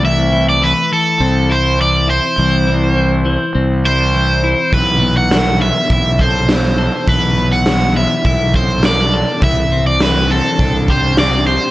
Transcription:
<<
  \new Staff \with { instrumentName = "Overdriven electric guitar" } { \time 4/4 \key a \dorian \tempo 4 = 102 e''8. d''16 b'8 a'4 c''8 d''8 c''8~ | c''2~ c''8 c''4. | b'8. fis''8. e''8 e''8 c''4. | b'8. fis''8. e''8 e''8 c''8 d''4 |
e''8. d''16 b'8 a'4 c''8 d''8 c''8 | }
  \new Staff \with { instrumentName = "Clean electric guitar" } { \time 4/4 \key a \dorian e8 e8 e8 e8 c'8 e'8 e8 e'8 | e8 e8 e8 e8 c'8 e'8 e8 e'8 | e8 b8 e8 b8 e'8 a'8 b8 a'8 | e8 b8 e8 b8 e'8 a'8 b8 a'8 |
e8 c'8 e8 c'8 d'8 g'8 c'8 g'8 | }
  \new Staff \with { instrumentName = "Fingered electric bass" } { \clef bass \time 4/4 \key a \dorian c,4. r8 c,2 | c,2 c,2 | b,,2 b,,2 | b,,2 b,,2 |
c,2 c,2 | }
  \new DrumStaff \with { instrumentName = "Drums" } \drummode { \time 4/4 r4 r4 r4 r4 | r4 r4 r4 r4 | <hho bd>4 <hho sn>4 <hho bd>8 bd8 <hho sn>4 | <hho bd>4 <hho sn>4 <hho bd>8 bd8 <hho sn>4 |
<hho bd>4 <hho sn>4 <hho bd>8 bd8 <hho sn>4 | }
>>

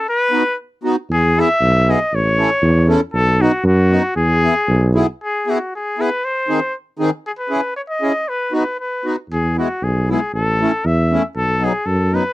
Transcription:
<<
  \new Staff \with { instrumentName = "Trumpet" } { \time 2/4 \key e \major \tempo 4 = 117 b'4 r4 | gis'8 e''4 dis''8 | cis''4. r8 | a'8 fis'8 fis'4 |
gis'4. r8 | gis'8 fis'8 gis'8 b'8 | bis'4 r4 | gis'16 b'8. cis''16 dis''8. |
b'8 b'8 b'8. r16 | gis'8 fis'8 gis'8 gis'8 | a'4 e''8. r16 | a'8 gis'8 a'8 b'8 | }
  \new Staff \with { instrumentName = "Accordion" } { \time 2/4 \key e \major r8 <b dis' fis'>8 r8 <b dis' fis'>8 | r8 <b e' gis'>8 r8 <b e' gis'>8 | r8 <cis' e' a'>8 r8 <cis' e' a'>8 | r8 <b dis' fis'>8 r8 <b dis' fis'>8 |
r8 <b e' gis'>8 r8 <b e' gis'>8 | r8 <b e' gis'>8 r8 <b e' gis'>8 | r8 <dis bis dis' gis'>8 r8 <dis bis dis' gis'>8 | r8 <cis' e' gis'>8 r8 <cis' e' gis'>8 |
r8 <b dis' fis'>8 r8 <b dis' fis'>8 | r8 <gis b e'>8 r8 <gis b e'>8 | r8 <a cis' e'>8 r8 <a cis' e'>8 | r8 <fis b dis'>8 r8 <fis b dis'>8 | }
  \new Staff \with { instrumentName = "Tuba" } { \clef bass \time 2/4 \key e \major r2 | e,4 b,,4 | a,,4 e,4 | b,,4 fis,4 |
e,4 b,,4 | r2 | r2 | r2 |
r2 | e,4 b,,4 | a,,4 e,4 | b,,4 fis,4 | }
>>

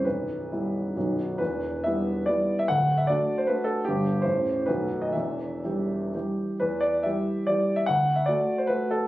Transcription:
<<
  \new Staff \with { instrumentName = "Grand piano" } { \time 3/4 \key e \minor \tempo 4 = 139 b'2~ b'8 r8 | b'4 e''4 d''8. e''16 | fis''8. e''16 d''8. c''16 b'8 a'8 | g'4 c''4 b'8. dis''16 |
e''2 r4 | b'8 d''8 e''4 d''8. e''16 | fis''8. e''16 d''8. c''16 b'8 a'8 | }
  \new Staff \with { instrumentName = "Grand piano" } { \clef bass \time 3/4 \key e \minor <b,,, b,,>4 <g b e'>4 <b,,, b,, fis b dis'>4 | <e,, e,>4 <g b e'>4 <g b e'>4 | <d,, d,>4 <a d' fis'>4 <a d' fis'>4 | <g,, g, g b d'>4 <a,,, a,, e a g'>4 <b,,, b,, dis a fis'>4 |
<e,, e,>4 <e g g'>4 <e g g'>4 | e,4 <e g g'>4 <e g g'>4 | d,4 <a fis'>4 <a fis'>4 | }
>>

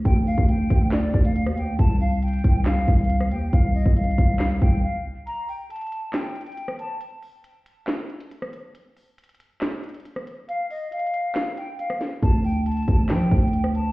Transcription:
<<
  \new Staff \with { instrumentName = "Flute" } { \time 4/4 \key d \phrygian \tempo 4 = 138 g''8 f''8 g''4 d''8. f''8. g''8 | a''8 f''8 g''4 f''8. f''8. g''8 | f''8 ees''8 f''4. g''8 f''8 r8 | bes''8 g''8 a''4 g''8. g''8. a''8 |
r1 | r1 | f''8 ees''8 f''4. g''8 f''8 r8 | a''8 g''8 a''4 g''8. g''8. a''8 | }
  \new Staff \with { instrumentName = "808-style bass" } { \clef bass \time 4/4 \key d \phrygian d,8. d,8. d,4 d,8. ees,16. d,16. | c,4. c,4 c,4 ees,8 | c,8. c,8. c,4 c,8 r4 | r1 |
r1 | r1 | r1 | d,4. d,8 f8 d,4. | }
  \new DrumStaff \with { instrumentName = "Drums" } \drummode { \time 4/4 <hh bd>8 hho16 bd16 hh8 <hh bd>8 <hc hh sn>8 <hh bd>16 hh16 hh16 ss16 hh8 | <hh bd>8 hho8 hh32 hh32 hh32 hh32 <hh bd>8 <hc hh sn>8 <hh bd>32 hh32 hh32 hh32 hh16 ss16 hh8 | <hh bd>8 hho16 bd16 \tuplet 3/2 { hh16 hh16 hh16 <hh bd>16 r16 r16 } <hc hh sn>8 <hh bd>8 r4 | hh8 hho8 hh32 hh32 hh32 hh32 hh8 <hc hh sn>8 hh32 hh32 hh32 hh32 hh16 ss16 hh8 |
hh8 hho8 hh8 hh8 <hc hh sn>8 hh16 hh16 hh16 ss16 hh8 | hh8 hho8 hh32 hh32 hh32 hh32 hh8 <hc hh sn>8 hh32 hh32 hh32 hh32 hh16 ss16 hh8 | hh8 hho8 \tuplet 3/2 { hh16 hh16 hh16 hh16 r16 r16 } <hc hh sn>8 hh8 hh16 ss16 <hh sn>8 | <hh bd>8 hho8 hh32 hh32 hh32 hh32 <hh bd>8 <hc hh sn>8 <hh bd>32 hh32 hh32 hh32 hh16 ss16 hh8 | }
>>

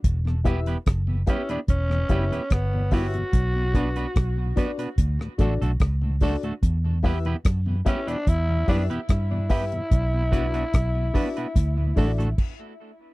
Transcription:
<<
  \new Staff \with { instrumentName = "Upright piano" } { \time 4/4 \key e \dorian \tempo 4 = 73 r8 <e' g' b' e''>16 r8. <e' g' b' e''>16 r8. <e' g' b' e''>16 r8. <e' g' b' e''>16 r16 | r8 <d' fis' b' d''>16 r8. <d' fis' b' d''>16 r8. <d' fis' a' d''>16 r8. <d' fis' a' d''>16 r16 | r8 <e' g' b' e''>16 r8. <e' g' b' e''>16 r8. <e' g' b' e''>16 r8. <e' g' b' e''>16 r16 | r8 <d' fis' b' d''>16 r8. <d' fis' b' d''>16 r8. <d' fis' a' d''>16 r4 r16 | }
  \new Staff \with { instrumentName = "Clean electric guitar" } { \time 4/4 \key e \dorian r8 <b e' g' b'>16 <b e' g' b'>16 r8 <b e' g' b'>16 <b e' g' b'>16 r8 <b e' g' b'>16 <b e' g' b'>16 r8 <b e' g' b'>16 r16 | r8 <b d' fis' b'>16 <b d' fis' b'>16 r8 <b d' fis' b'>16 <b d' fis' b'>16 r8 <a d' fis' a'>16 <a d' fis' a'>16 r8 <a d' fis' a'>16 <a d' fis' a'>16 | r8 <b e' g' b'>16 <b e' g' b'>16 r8 <b e' g' b'>16 <b e' g' b'>16 r8 <b e' g' b'>16 <b e' g' b'>16 r8 <b e' g' b'>16 r16 | r8 <b d' fis' b'>16 <b d' fis' b'>16 r8 <b d' fis' b'>16 <b d' fis' b'>16 r8 <a d' fis' a'>16 <a d' fis' a'>16 r4 | }
  \new Staff \with { instrumentName = "Tenor saxophone" } { \time 4/4 \key e \dorian r4. cis'16 d'16 cis'4 b8 fis'8~ | fis'4. r2 r8 | r4. cis'16 d'16 e'8 d'8 e'4~ | e'2. r4 | }
  \new Staff \with { instrumentName = "Tonewheel organ" } { \clef bass \time 4/4 \key e \dorian << { r8 <g b e'>8 r8 <g b e'>8 r8 <g b e'>8 r8 <g b e'>8 | r8 <fis b d'>8 r8 <fis b d'>8 r8 <fis a d'>8 r8 <fis a d'>8 | r8 <g b e'>8 r8 <g b e'>8 r8 <g b e'>8 r8 <g b e'>8 | r8 <fis b d'>8 r8 <fis b d'>8 r8 <fis a d'>8 r4 | } \\ { r16 <e, b,>16 r16 <e, b,>16 r16 <e, b,>16 r16 <e, b,>16 r16 <e, b,>16 r16 <e, b,>16 r16 <e, b,>16 r16 <e, b,>16 | r16 b,16 r16 b,16 r16 b,16 r16 b,16 r16 <d, a,>16 r16 <d, a,>16 r16 <d, a,>16 r16 <d, a,>16 | r16 <e, b,>16 r16 <e, b,>16 r16 <e, b,>16 r16 <e, b,>16 r16 <e, b,>16 r16 <e, b,>16 r16 <e, b,>16 r16 <e, b,>16 | r16 b,16 r16 b,16 r16 b,16 r16 b,16 r16 <d, a,>16 r16 <d, a,>16 r4 | } >> }
  \new Staff \with { instrumentName = "Fingered electric bass" } { \clef bass \time 4/4 \key e \dorian e,,4 fis,,8 r8 e,,8 fis,,16 r16 g,,4 | b,,4 b,,8 r8 d,16 r16 a,,16 b,,16 cis,8. r16 | e,4 fis,8 r8 e,8 fis,16 r16 g,4 | b,,4 b,,8 r8 d,8 a,,8 r4 | }
  \new DrumStaff \with { instrumentName = "Drums" } \drummode { \time 4/4 <hh bd>16 ss16 <hh bd>16 hh16 <hh bd ss>8 <hh bd>16 hh16 <hh bd>16 ss16 <hh bd>16 hh16 <hh bd ss>8 <hho bd>16 hh16 | <hh bd>8 <hh bd>16 hh16 <hh bd ss>8 <hh bd>16 hh16 <hh bd>16 ss16 <hh bd>16 hh16 <hh bd ss>8 <hho bd>16 hh16 | <hh bd>8 <hho bd>16 hh16 <hh bd ss>8 <hh bd>16 hh16 <hh bd>8 <hho bd>16 hh16 <hh bd ss>8 <hho bd>16 hh16 | <hh bd>8 <hh bd>16 hh16 <hh bd ss>8 <hho bd>16 hh16 <hh bd>8 <hho bd>16 hh16 <cymc bd>4 | }
>>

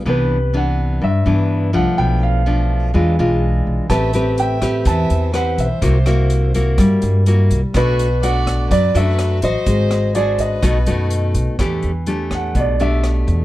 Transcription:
<<
  \new Staff \with { instrumentName = "Grand piano" } { \time 4/4 \key b \phrygian \tempo 4 = 125 b'4 fis''4 e''4. fis''8 | g''8 f''2 r4. | a''4 g''4 a''4 fis''8 e''8~ | e''4. r2 r8 |
b'4 fis''4 d''8 e''4 ees''8~ | ees''4 d''8 ees''2 r8 | \key e \minor r4. fis''8 d''8 e''8 r4 | }
  \new Staff \with { instrumentName = "Violin" } { \time 4/4 \key b \phrygian r1 | r1 | e''4 e''4 e''4 c''8 c''8~ | c''4. r2 r8 |
fis'4 d''4 b'8 b'4 c''8~ | c''4 aes'8 b'2 r8 | \key e \minor r1 | }
  \new Staff \with { instrumentName = "Nylon-string guitar" } { \time 4/4 \key b \phrygian << { <e b d'>8 r8 <e b d'>4 r8 <e b d'>4 <f a d'>8~ | <f a d'>4 <f a d'>4 <gis d' f'>8 <gis d' f'>4. | <c' g' b'>8 <c' g' b'>4 <c' g' b'>4. <c' g' b'>8 r8 | <bes e' fis'>8 <bes e' fis'>4 <bes e' fis'>4. <bes e' fis'>8 r8 |
<a d' fis'>8 r8 <a d' fis'>4 r8 <a d' fis'>4 <fis' c''>8~ | <fis' c''>4 <d' ges' c''>4 <a dis' fis'>8 <a dis' fis'>4. | \key e \minor <a d' g'>8 r8 <a d' g'>4. <a d' g'>4. | } \\ { c2 g,2 | b,2 e2 | a2 e2 | c2 g2 |
b,2 fis2 | aes2 b,2 | e2 b,2 | } >> }
  \new Staff \with { instrumentName = "Upright bass" } { \clef bass \time 4/4 \key b \phrygian c,2 g,8 g,4 c,16 r16 | b,,2 e,8 b,,4 b,,16 r16 | a,,2 e,8 e,4 b,,16 r16 | c,2 g,8 g,4 c,16 r16 |
b,,2 fis,8 fis,4 a,,16 r16 | aes,,2 b,,8 fis,4 b,,16 r16 | \key e \minor e,8 e,4. b,,4. e,8 | }
  \new DrumStaff \with { instrumentName = "Drums" } \drummode { \time 4/4 r4 r4 r4 r4 | r4 r4 r4 r4 | <hh bd ss>8 hh8 hh8 <hh bd ss>8 <hh bd>8 hh8 <hh ss>8 <hh bd>8 | <hh bd>8 <hh ss>8 hh8 <hh bd>8 <hh bd ss>8 hh8 hh8 <hh bd>8 |
<hh bd ss>8 hh8 hh8 <hh bd ss>8 <hh bd>8 hh8 <hh ss>8 <hh bd>8 | <hh bd>8 <hh ss>8 hh8 <hh bd>8 <hh bd ss>8 hh8 hh8 <hh bd>8 | <hh bd ss>8 hh8 hh8 <hh bd ss>8 <hh bd>8 hh8 <hh ss>8 <hh bd>8 | }
>>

